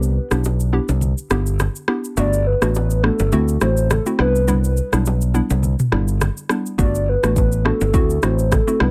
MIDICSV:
0, 0, Header, 1, 5, 480
1, 0, Start_track
1, 0, Tempo, 576923
1, 1807, Time_signature, 4, 2, 24, 8
1, 7412, End_track
2, 0, Start_track
2, 0, Title_t, "Soft synth lead"
2, 0, Program_c, 0, 80
2, 0, Note_on_c, 0, 71, 86
2, 131, Note_off_c, 0, 71, 0
2, 1815, Note_on_c, 0, 74, 120
2, 2052, Note_on_c, 0, 71, 101
2, 2065, Note_off_c, 0, 74, 0
2, 2290, Note_off_c, 0, 71, 0
2, 2295, Note_on_c, 0, 71, 94
2, 2515, Note_off_c, 0, 71, 0
2, 2533, Note_on_c, 0, 69, 99
2, 2977, Note_off_c, 0, 69, 0
2, 3013, Note_on_c, 0, 72, 95
2, 3234, Note_off_c, 0, 72, 0
2, 3253, Note_on_c, 0, 69, 90
2, 3360, Note_off_c, 0, 69, 0
2, 3495, Note_on_c, 0, 71, 91
2, 3938, Note_off_c, 0, 71, 0
2, 5657, Note_on_c, 0, 74, 117
2, 5899, Note_on_c, 0, 71, 101
2, 5912, Note_off_c, 0, 74, 0
2, 6133, Note_off_c, 0, 71, 0
2, 6138, Note_on_c, 0, 71, 99
2, 6356, Note_off_c, 0, 71, 0
2, 6380, Note_on_c, 0, 69, 100
2, 6860, Note_on_c, 0, 72, 92
2, 6872, Note_off_c, 0, 69, 0
2, 7101, Note_on_c, 0, 69, 87
2, 7114, Note_off_c, 0, 72, 0
2, 7339, Note_on_c, 0, 71, 90
2, 7352, Note_off_c, 0, 69, 0
2, 7412, Note_off_c, 0, 71, 0
2, 7412, End_track
3, 0, Start_track
3, 0, Title_t, "Synth pluck"
3, 0, Program_c, 1, 84
3, 0, Note_on_c, 1, 59, 92
3, 0, Note_on_c, 1, 62, 83
3, 0, Note_on_c, 1, 64, 85
3, 0, Note_on_c, 1, 67, 101
3, 226, Note_off_c, 1, 59, 0
3, 227, Note_off_c, 1, 62, 0
3, 228, Note_off_c, 1, 64, 0
3, 229, Note_off_c, 1, 67, 0
3, 257, Note_on_c, 1, 59, 75
3, 258, Note_on_c, 1, 62, 74
3, 260, Note_on_c, 1, 64, 70
3, 261, Note_on_c, 1, 67, 87
3, 413, Note_off_c, 1, 59, 0
3, 413, Note_off_c, 1, 62, 0
3, 415, Note_off_c, 1, 64, 0
3, 415, Note_off_c, 1, 67, 0
3, 604, Note_on_c, 1, 59, 80
3, 606, Note_on_c, 1, 62, 75
3, 608, Note_on_c, 1, 64, 75
3, 610, Note_on_c, 1, 67, 91
3, 776, Note_off_c, 1, 59, 0
3, 777, Note_off_c, 1, 62, 0
3, 778, Note_off_c, 1, 64, 0
3, 779, Note_off_c, 1, 67, 0
3, 1085, Note_on_c, 1, 59, 76
3, 1087, Note_on_c, 1, 62, 69
3, 1088, Note_on_c, 1, 64, 72
3, 1090, Note_on_c, 1, 67, 85
3, 1256, Note_off_c, 1, 59, 0
3, 1258, Note_off_c, 1, 62, 0
3, 1258, Note_off_c, 1, 64, 0
3, 1259, Note_off_c, 1, 67, 0
3, 1564, Note_on_c, 1, 59, 77
3, 1567, Note_on_c, 1, 62, 71
3, 1569, Note_on_c, 1, 64, 72
3, 1569, Note_on_c, 1, 67, 85
3, 1736, Note_off_c, 1, 59, 0
3, 1737, Note_off_c, 1, 62, 0
3, 1738, Note_off_c, 1, 64, 0
3, 1739, Note_off_c, 1, 67, 0
3, 1805, Note_on_c, 1, 57, 93
3, 1806, Note_on_c, 1, 59, 80
3, 1808, Note_on_c, 1, 62, 83
3, 1810, Note_on_c, 1, 66, 99
3, 2146, Note_off_c, 1, 57, 0
3, 2147, Note_off_c, 1, 59, 0
3, 2148, Note_off_c, 1, 62, 0
3, 2149, Note_off_c, 1, 66, 0
3, 2177, Note_on_c, 1, 57, 77
3, 2179, Note_on_c, 1, 59, 73
3, 2180, Note_on_c, 1, 62, 75
3, 2182, Note_on_c, 1, 66, 88
3, 2333, Note_off_c, 1, 57, 0
3, 2334, Note_off_c, 1, 59, 0
3, 2335, Note_off_c, 1, 62, 0
3, 2335, Note_off_c, 1, 66, 0
3, 2523, Note_on_c, 1, 57, 80
3, 2525, Note_on_c, 1, 59, 75
3, 2526, Note_on_c, 1, 62, 74
3, 2528, Note_on_c, 1, 66, 86
3, 2696, Note_off_c, 1, 57, 0
3, 2696, Note_off_c, 1, 59, 0
3, 2697, Note_off_c, 1, 62, 0
3, 2698, Note_off_c, 1, 66, 0
3, 2765, Note_on_c, 1, 57, 100
3, 2767, Note_on_c, 1, 60, 84
3, 2769, Note_on_c, 1, 64, 87
3, 2770, Note_on_c, 1, 66, 108
3, 2989, Note_off_c, 1, 57, 0
3, 2990, Note_off_c, 1, 60, 0
3, 2991, Note_off_c, 1, 64, 0
3, 2991, Note_off_c, 1, 66, 0
3, 3005, Note_on_c, 1, 57, 78
3, 3006, Note_on_c, 1, 60, 72
3, 3008, Note_on_c, 1, 64, 72
3, 3010, Note_on_c, 1, 66, 82
3, 3176, Note_off_c, 1, 57, 0
3, 3177, Note_off_c, 1, 60, 0
3, 3178, Note_off_c, 1, 64, 0
3, 3179, Note_off_c, 1, 66, 0
3, 3379, Note_on_c, 1, 57, 77
3, 3380, Note_on_c, 1, 60, 72
3, 3382, Note_on_c, 1, 64, 74
3, 3383, Note_on_c, 1, 66, 86
3, 3481, Note_off_c, 1, 64, 0
3, 3486, Note_on_c, 1, 55, 95
3, 3488, Note_on_c, 1, 59, 88
3, 3489, Note_on_c, 1, 62, 87
3, 3491, Note_on_c, 1, 64, 107
3, 3534, Note_off_c, 1, 57, 0
3, 3535, Note_off_c, 1, 60, 0
3, 3536, Note_off_c, 1, 66, 0
3, 3709, Note_off_c, 1, 55, 0
3, 3710, Note_off_c, 1, 59, 0
3, 3711, Note_off_c, 1, 62, 0
3, 3712, Note_off_c, 1, 64, 0
3, 3724, Note_on_c, 1, 55, 88
3, 3726, Note_on_c, 1, 59, 84
3, 3728, Note_on_c, 1, 62, 86
3, 3730, Note_on_c, 1, 64, 100
3, 4066, Note_off_c, 1, 55, 0
3, 4067, Note_off_c, 1, 59, 0
3, 4068, Note_off_c, 1, 62, 0
3, 4069, Note_off_c, 1, 64, 0
3, 4097, Note_on_c, 1, 55, 81
3, 4098, Note_on_c, 1, 59, 70
3, 4100, Note_on_c, 1, 62, 74
3, 4102, Note_on_c, 1, 64, 85
3, 4253, Note_off_c, 1, 55, 0
3, 4254, Note_off_c, 1, 59, 0
3, 4254, Note_off_c, 1, 62, 0
3, 4255, Note_off_c, 1, 64, 0
3, 4444, Note_on_c, 1, 55, 77
3, 4445, Note_on_c, 1, 59, 72
3, 4446, Note_on_c, 1, 62, 72
3, 4449, Note_on_c, 1, 64, 92
3, 4616, Note_off_c, 1, 55, 0
3, 4617, Note_off_c, 1, 59, 0
3, 4617, Note_off_c, 1, 62, 0
3, 4618, Note_off_c, 1, 64, 0
3, 4924, Note_on_c, 1, 55, 78
3, 4926, Note_on_c, 1, 59, 70
3, 4928, Note_on_c, 1, 62, 73
3, 4929, Note_on_c, 1, 64, 86
3, 5096, Note_off_c, 1, 55, 0
3, 5097, Note_off_c, 1, 59, 0
3, 5098, Note_off_c, 1, 62, 0
3, 5098, Note_off_c, 1, 64, 0
3, 5404, Note_on_c, 1, 55, 77
3, 5405, Note_on_c, 1, 59, 68
3, 5407, Note_on_c, 1, 62, 71
3, 5409, Note_on_c, 1, 64, 86
3, 5576, Note_off_c, 1, 55, 0
3, 5577, Note_off_c, 1, 59, 0
3, 5577, Note_off_c, 1, 62, 0
3, 5578, Note_off_c, 1, 64, 0
3, 5642, Note_on_c, 1, 57, 91
3, 5644, Note_on_c, 1, 59, 84
3, 5646, Note_on_c, 1, 62, 83
3, 5647, Note_on_c, 1, 66, 99
3, 5985, Note_off_c, 1, 57, 0
3, 5986, Note_off_c, 1, 59, 0
3, 5987, Note_off_c, 1, 62, 0
3, 5988, Note_off_c, 1, 66, 0
3, 6016, Note_on_c, 1, 57, 78
3, 6017, Note_on_c, 1, 59, 70
3, 6019, Note_on_c, 1, 62, 73
3, 6021, Note_on_c, 1, 66, 87
3, 6172, Note_off_c, 1, 57, 0
3, 6173, Note_off_c, 1, 59, 0
3, 6174, Note_off_c, 1, 62, 0
3, 6175, Note_off_c, 1, 66, 0
3, 6362, Note_on_c, 1, 57, 76
3, 6364, Note_on_c, 1, 59, 73
3, 6366, Note_on_c, 1, 62, 73
3, 6366, Note_on_c, 1, 66, 88
3, 6535, Note_off_c, 1, 57, 0
3, 6536, Note_off_c, 1, 59, 0
3, 6537, Note_off_c, 1, 62, 0
3, 6537, Note_off_c, 1, 66, 0
3, 6602, Note_on_c, 1, 57, 92
3, 6604, Note_on_c, 1, 60, 85
3, 6605, Note_on_c, 1, 64, 88
3, 6607, Note_on_c, 1, 66, 107
3, 6828, Note_off_c, 1, 57, 0
3, 6829, Note_off_c, 1, 60, 0
3, 6829, Note_off_c, 1, 64, 0
3, 6830, Note_off_c, 1, 66, 0
3, 6843, Note_on_c, 1, 57, 74
3, 6845, Note_on_c, 1, 60, 69
3, 6847, Note_on_c, 1, 64, 70
3, 6849, Note_on_c, 1, 66, 86
3, 7016, Note_off_c, 1, 57, 0
3, 7016, Note_off_c, 1, 60, 0
3, 7018, Note_off_c, 1, 64, 0
3, 7018, Note_off_c, 1, 66, 0
3, 7215, Note_on_c, 1, 57, 78
3, 7217, Note_on_c, 1, 60, 72
3, 7219, Note_on_c, 1, 64, 75
3, 7220, Note_on_c, 1, 66, 83
3, 7318, Note_off_c, 1, 64, 0
3, 7323, Note_on_c, 1, 55, 93
3, 7324, Note_on_c, 1, 59, 88
3, 7326, Note_on_c, 1, 62, 87
3, 7328, Note_on_c, 1, 64, 108
3, 7372, Note_off_c, 1, 57, 0
3, 7373, Note_off_c, 1, 60, 0
3, 7375, Note_off_c, 1, 66, 0
3, 7412, Note_off_c, 1, 55, 0
3, 7412, Note_off_c, 1, 59, 0
3, 7412, Note_off_c, 1, 62, 0
3, 7412, Note_off_c, 1, 64, 0
3, 7412, End_track
4, 0, Start_track
4, 0, Title_t, "Fingered electric bass"
4, 0, Program_c, 2, 33
4, 0, Note_on_c, 2, 36, 91
4, 145, Note_off_c, 2, 36, 0
4, 259, Note_on_c, 2, 35, 87
4, 649, Note_off_c, 2, 35, 0
4, 740, Note_on_c, 2, 36, 88
4, 935, Note_off_c, 2, 36, 0
4, 1087, Note_on_c, 2, 31, 98
4, 1390, Note_off_c, 2, 31, 0
4, 1807, Note_on_c, 2, 31, 100
4, 2109, Note_off_c, 2, 31, 0
4, 2180, Note_on_c, 2, 33, 96
4, 2569, Note_off_c, 2, 33, 0
4, 2659, Note_on_c, 2, 31, 87
4, 2747, Note_off_c, 2, 31, 0
4, 2768, Note_on_c, 2, 38, 101
4, 2963, Note_off_c, 2, 38, 0
4, 3007, Note_on_c, 2, 33, 92
4, 3310, Note_off_c, 2, 33, 0
4, 3489, Note_on_c, 2, 36, 92
4, 3986, Note_off_c, 2, 36, 0
4, 4101, Note_on_c, 2, 35, 85
4, 4490, Note_off_c, 2, 35, 0
4, 4580, Note_on_c, 2, 36, 88
4, 4775, Note_off_c, 2, 36, 0
4, 4928, Note_on_c, 2, 31, 100
4, 5230, Note_off_c, 2, 31, 0
4, 5647, Note_on_c, 2, 31, 95
4, 5949, Note_off_c, 2, 31, 0
4, 6019, Note_on_c, 2, 33, 86
4, 6409, Note_off_c, 2, 33, 0
4, 6499, Note_on_c, 2, 31, 85
4, 6587, Note_off_c, 2, 31, 0
4, 6606, Note_on_c, 2, 38, 104
4, 6801, Note_off_c, 2, 38, 0
4, 6847, Note_on_c, 2, 33, 90
4, 7149, Note_off_c, 2, 33, 0
4, 7327, Note_on_c, 2, 36, 92
4, 7412, Note_off_c, 2, 36, 0
4, 7412, End_track
5, 0, Start_track
5, 0, Title_t, "Drums"
5, 23, Note_on_c, 9, 82, 60
5, 106, Note_off_c, 9, 82, 0
5, 260, Note_on_c, 9, 82, 60
5, 261, Note_on_c, 9, 37, 91
5, 343, Note_off_c, 9, 82, 0
5, 344, Note_off_c, 9, 37, 0
5, 368, Note_on_c, 9, 82, 69
5, 381, Note_on_c, 9, 60, 72
5, 451, Note_off_c, 9, 82, 0
5, 465, Note_off_c, 9, 60, 0
5, 499, Note_on_c, 9, 82, 57
5, 582, Note_off_c, 9, 82, 0
5, 737, Note_on_c, 9, 82, 54
5, 739, Note_on_c, 9, 61, 77
5, 820, Note_off_c, 9, 82, 0
5, 823, Note_off_c, 9, 61, 0
5, 843, Note_on_c, 9, 64, 66
5, 847, Note_on_c, 9, 82, 62
5, 926, Note_off_c, 9, 64, 0
5, 930, Note_off_c, 9, 82, 0
5, 979, Note_on_c, 9, 82, 54
5, 1062, Note_off_c, 9, 82, 0
5, 1084, Note_on_c, 9, 82, 54
5, 1088, Note_on_c, 9, 37, 92
5, 1089, Note_on_c, 9, 61, 67
5, 1167, Note_off_c, 9, 82, 0
5, 1171, Note_off_c, 9, 37, 0
5, 1172, Note_off_c, 9, 61, 0
5, 1218, Note_on_c, 9, 82, 58
5, 1302, Note_off_c, 9, 82, 0
5, 1327, Note_on_c, 9, 82, 70
5, 1330, Note_on_c, 9, 37, 93
5, 1332, Note_on_c, 9, 60, 86
5, 1332, Note_on_c, 9, 64, 85
5, 1410, Note_off_c, 9, 82, 0
5, 1413, Note_off_c, 9, 37, 0
5, 1415, Note_off_c, 9, 60, 0
5, 1415, Note_off_c, 9, 64, 0
5, 1460, Note_on_c, 9, 82, 62
5, 1543, Note_off_c, 9, 82, 0
5, 1563, Note_on_c, 9, 37, 97
5, 1647, Note_off_c, 9, 37, 0
5, 1701, Note_on_c, 9, 82, 49
5, 1784, Note_off_c, 9, 82, 0
5, 1806, Note_on_c, 9, 82, 80
5, 1816, Note_on_c, 9, 64, 71
5, 1889, Note_off_c, 9, 82, 0
5, 1899, Note_off_c, 9, 64, 0
5, 1941, Note_on_c, 9, 82, 61
5, 2024, Note_off_c, 9, 82, 0
5, 2179, Note_on_c, 9, 82, 59
5, 2180, Note_on_c, 9, 37, 91
5, 2262, Note_off_c, 9, 82, 0
5, 2263, Note_off_c, 9, 37, 0
5, 2286, Note_on_c, 9, 82, 68
5, 2300, Note_on_c, 9, 60, 72
5, 2369, Note_off_c, 9, 82, 0
5, 2383, Note_off_c, 9, 60, 0
5, 2416, Note_on_c, 9, 82, 57
5, 2500, Note_off_c, 9, 82, 0
5, 2528, Note_on_c, 9, 37, 91
5, 2611, Note_off_c, 9, 37, 0
5, 2655, Note_on_c, 9, 82, 53
5, 2660, Note_on_c, 9, 61, 80
5, 2739, Note_off_c, 9, 82, 0
5, 2743, Note_off_c, 9, 61, 0
5, 2763, Note_on_c, 9, 64, 67
5, 2764, Note_on_c, 9, 82, 64
5, 2846, Note_off_c, 9, 64, 0
5, 2847, Note_off_c, 9, 82, 0
5, 2898, Note_on_c, 9, 82, 53
5, 2981, Note_off_c, 9, 82, 0
5, 3003, Note_on_c, 9, 82, 55
5, 3007, Note_on_c, 9, 37, 91
5, 3008, Note_on_c, 9, 61, 66
5, 3086, Note_off_c, 9, 82, 0
5, 3090, Note_off_c, 9, 37, 0
5, 3092, Note_off_c, 9, 61, 0
5, 3138, Note_on_c, 9, 82, 60
5, 3221, Note_off_c, 9, 82, 0
5, 3247, Note_on_c, 9, 82, 68
5, 3250, Note_on_c, 9, 37, 92
5, 3253, Note_on_c, 9, 60, 85
5, 3253, Note_on_c, 9, 64, 85
5, 3330, Note_off_c, 9, 82, 0
5, 3334, Note_off_c, 9, 37, 0
5, 3336, Note_off_c, 9, 60, 0
5, 3336, Note_off_c, 9, 64, 0
5, 3380, Note_on_c, 9, 82, 60
5, 3464, Note_off_c, 9, 82, 0
5, 3484, Note_on_c, 9, 37, 93
5, 3568, Note_off_c, 9, 37, 0
5, 3622, Note_on_c, 9, 82, 51
5, 3705, Note_off_c, 9, 82, 0
5, 3728, Note_on_c, 9, 82, 80
5, 3738, Note_on_c, 9, 64, 70
5, 3811, Note_off_c, 9, 82, 0
5, 3821, Note_off_c, 9, 64, 0
5, 3862, Note_on_c, 9, 82, 63
5, 3945, Note_off_c, 9, 82, 0
5, 3968, Note_on_c, 9, 82, 51
5, 4051, Note_off_c, 9, 82, 0
5, 4100, Note_on_c, 9, 37, 95
5, 4100, Note_on_c, 9, 82, 59
5, 4183, Note_off_c, 9, 82, 0
5, 4184, Note_off_c, 9, 37, 0
5, 4207, Note_on_c, 9, 82, 67
5, 4221, Note_on_c, 9, 60, 72
5, 4291, Note_off_c, 9, 82, 0
5, 4304, Note_off_c, 9, 60, 0
5, 4338, Note_on_c, 9, 82, 57
5, 4421, Note_off_c, 9, 82, 0
5, 4447, Note_on_c, 9, 82, 53
5, 4531, Note_off_c, 9, 82, 0
5, 4577, Note_on_c, 9, 82, 57
5, 4580, Note_on_c, 9, 61, 74
5, 4660, Note_off_c, 9, 82, 0
5, 4663, Note_off_c, 9, 61, 0
5, 4683, Note_on_c, 9, 64, 67
5, 4686, Note_on_c, 9, 82, 62
5, 4766, Note_off_c, 9, 64, 0
5, 4769, Note_off_c, 9, 82, 0
5, 4819, Note_on_c, 9, 82, 52
5, 4822, Note_on_c, 9, 45, 92
5, 4903, Note_off_c, 9, 82, 0
5, 4905, Note_off_c, 9, 45, 0
5, 4928, Note_on_c, 9, 37, 88
5, 4931, Note_on_c, 9, 61, 68
5, 5011, Note_off_c, 9, 37, 0
5, 5014, Note_off_c, 9, 61, 0
5, 5058, Note_on_c, 9, 82, 60
5, 5141, Note_off_c, 9, 82, 0
5, 5167, Note_on_c, 9, 82, 71
5, 5170, Note_on_c, 9, 37, 97
5, 5172, Note_on_c, 9, 60, 84
5, 5172, Note_on_c, 9, 64, 88
5, 5250, Note_off_c, 9, 82, 0
5, 5253, Note_off_c, 9, 37, 0
5, 5255, Note_off_c, 9, 60, 0
5, 5255, Note_off_c, 9, 64, 0
5, 5302, Note_on_c, 9, 82, 62
5, 5385, Note_off_c, 9, 82, 0
5, 5403, Note_on_c, 9, 37, 100
5, 5408, Note_on_c, 9, 82, 47
5, 5486, Note_off_c, 9, 37, 0
5, 5491, Note_off_c, 9, 82, 0
5, 5543, Note_on_c, 9, 82, 50
5, 5626, Note_off_c, 9, 82, 0
5, 5647, Note_on_c, 9, 36, 115
5, 5648, Note_on_c, 9, 82, 78
5, 5657, Note_on_c, 9, 64, 73
5, 5730, Note_off_c, 9, 36, 0
5, 5731, Note_off_c, 9, 82, 0
5, 5740, Note_off_c, 9, 64, 0
5, 5782, Note_on_c, 9, 82, 58
5, 5866, Note_off_c, 9, 82, 0
5, 6020, Note_on_c, 9, 82, 58
5, 6021, Note_on_c, 9, 37, 92
5, 6103, Note_off_c, 9, 82, 0
5, 6104, Note_off_c, 9, 37, 0
5, 6125, Note_on_c, 9, 36, 93
5, 6127, Note_on_c, 9, 82, 67
5, 6141, Note_on_c, 9, 60, 70
5, 6209, Note_off_c, 9, 36, 0
5, 6210, Note_off_c, 9, 82, 0
5, 6224, Note_off_c, 9, 60, 0
5, 6258, Note_on_c, 9, 82, 57
5, 6341, Note_off_c, 9, 82, 0
5, 6369, Note_on_c, 9, 37, 91
5, 6452, Note_off_c, 9, 37, 0
5, 6496, Note_on_c, 9, 82, 54
5, 6500, Note_on_c, 9, 61, 79
5, 6579, Note_off_c, 9, 82, 0
5, 6583, Note_off_c, 9, 61, 0
5, 6604, Note_on_c, 9, 64, 65
5, 6605, Note_on_c, 9, 36, 112
5, 6606, Note_on_c, 9, 82, 60
5, 6687, Note_off_c, 9, 64, 0
5, 6689, Note_off_c, 9, 36, 0
5, 6689, Note_off_c, 9, 82, 0
5, 6739, Note_on_c, 9, 82, 53
5, 6823, Note_off_c, 9, 82, 0
5, 6843, Note_on_c, 9, 82, 53
5, 6848, Note_on_c, 9, 37, 89
5, 6849, Note_on_c, 9, 61, 72
5, 6927, Note_off_c, 9, 82, 0
5, 6931, Note_off_c, 9, 37, 0
5, 6933, Note_off_c, 9, 61, 0
5, 6979, Note_on_c, 9, 82, 59
5, 7062, Note_off_c, 9, 82, 0
5, 7086, Note_on_c, 9, 36, 86
5, 7087, Note_on_c, 9, 82, 68
5, 7091, Note_on_c, 9, 37, 92
5, 7092, Note_on_c, 9, 60, 86
5, 7092, Note_on_c, 9, 64, 84
5, 7169, Note_off_c, 9, 36, 0
5, 7171, Note_off_c, 9, 82, 0
5, 7174, Note_off_c, 9, 37, 0
5, 7176, Note_off_c, 9, 60, 0
5, 7176, Note_off_c, 9, 64, 0
5, 7220, Note_on_c, 9, 82, 61
5, 7304, Note_off_c, 9, 82, 0
5, 7324, Note_on_c, 9, 37, 99
5, 7407, Note_off_c, 9, 37, 0
5, 7412, End_track
0, 0, End_of_file